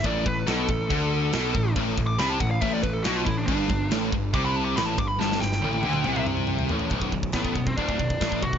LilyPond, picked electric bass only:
\new Staff \with { instrumentName = "Picked electric bass" } { \clef bass \time 4/4 \key b \phrygian \tempo 4 = 140 a,,8 a,,8 b,,8 a,,8 d,4 b,,8 a,,8 | a,,8 a,,8 c,8 a,,8 a,,8 a,,8 b,,8 a,,8 | g,,8 g,,8 a,,8 g,,8 c,4 a,,8 g,,8 | g,,8 g,,8 a,,8 d,8 c,4. a,,8 |
b,,,8 b,,,8 a,,8 b,,,8 d,,8 b,,,8 a,,8 b,,,8 | }